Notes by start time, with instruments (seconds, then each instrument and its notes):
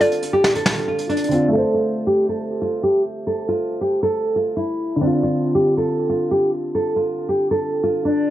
Already playing: grand piano D3 C4 F4
0.00 nylon-string guitar F4, synth pluck D5, closed hi-hat
0.12 closed hi-hat
0.22 closed hi-hat
0.33 nylon-string guitar G4
0.44 snare
0.55 nylon-string guitar A4, closed hi-hat
0.66 snare
0.77 closed hi-hat
0.88 nylon-string guitar F4
0.99 closed hi-hat
1.09 nylon-string guitar D4, closed hi-hat
1.17 closed hi-hat
1.24 closed hi-hat
1.29 grand piano D3 C4, closed hi-hat
1.34 grand piano F4
1.48 grand piano A3
1.53 nylon-string guitar A4, grand piano E5
1.58 grand piano C5
1.74 nylon-string guitar F4
2.07 nylon-string guitar G4
2.29 nylon-string guitar A4
2.62 nylon-string guitar F4
2.83 nylon-string guitar G4
3.27 nylon-string guitar A4
3.48 nylon-string guitar F4
3.81 nylon-string guitar G4
4.03 nylon-string guitar A4
4.36 nylon-string guitar F4
4.57 nylon-string guitar E4
4.96 grand piano D3
5.01 grand piano C4, nylon-string guitar D4
5.06 grand piano F4
5.23 nylon-string guitar F4
5.55 nylon-string guitar G4
5.77 nylon-string guitar A4
6.09 nylon-string guitar F4
6.31 nylon-string guitar G4
6.75 nylon-string guitar A4
6.96 nylon-string guitar F4
7.29 nylon-string guitar G4
7.51 nylon-string guitar A4
7.83 nylon-string guitar F4
8.05 nylon-string guitar D4